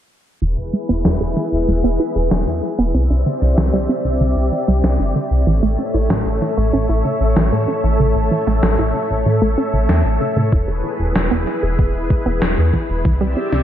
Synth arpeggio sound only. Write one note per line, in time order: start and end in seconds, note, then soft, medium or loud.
0.42 0.53 E3 medium
0.73 0.85 G#3 medium
0.89 0.96 B3 medium
1.05 1.12 E4 medium
1.21 1.36 G#4 medium
1.37 1.48 E3 medium
1.68 1.80 G#3 medium
1.84 1.91 B3 loud
2.00 2.07 E4 medium
2.16 2.31 G#4 medium
2.31 2.43 E3 medium
2.63 2.75 G#3 medium
2.79 2.86 B3 loud
2.94 3.01 C4 medium
3.10 3.25 D4 medium
3.26 3.38 D3 medium
3.58 3.69 E3 medium
3.73 3.80 G3 loud
3.89 3.96 C4 medium
4.05 4.20 D4 medium
4.21 4.32 D3 medium
4.52 4.64 E3 medium
4.68 4.75 G3 loud
4.84 4.91 C4 medium
5.00 5.15 D4 medium
5.15 5.27 D3 medium
5.47 5.59 E3 medium
5.63 5.70 A3 loud
5.79 5.86 C#4 medium
5.94 6.09 E4 medium
6.10 6.22 C#3 medium
6.42 6.53 E3 medium
6.57 6.65 A3 loud
6.73 6.80 C#4 medium
6.89 7.04 E4 medium
7.05 7.17 C#3 medium
7.36 7.48 E3 medium
7.52 7.59 A3 medium
7.68 7.75 C#4 medium
7.84 7.99 E4 medium
8.00 8.11 C#3 medium
8.31 8.43 E3 medium
8.47 8.54 A3 loud
8.63 8.70 C#4 medium
8.79 8.94 E4 medium
8.95 9.06 C#3 medium
9.26 9.38 E3 medium
9.42 9.49 A3 loud
9.58 9.65 C#4 loud
9.73 9.88 C#3 medium
9.89 9.96 C#4 medium
10.21 10.32 C#3 loud
10.37 10.48 C#3 loud
10.52 10.59 E4 medium
10.68 10.83 G#4 medium
10.84 10.96 E3 medium
11.15 11.27 G#3 medium
11.31 11.38 B3 loud
11.47 11.54 E4 medium
11.63 11.78 G#4 medium
11.79 11.90 E3 medium
12.10 12.22 G#3 medium
12.26 12.33 B3 loud
12.42 12.49 E4 medium
12.57 12.73 G#4 medium
12.73 12.85 E3 medium
13.05 13.17 E3 medium
13.21 13.28 G3 loud
13.37 13.44 C4 medium
13.52 13.63 D4 medium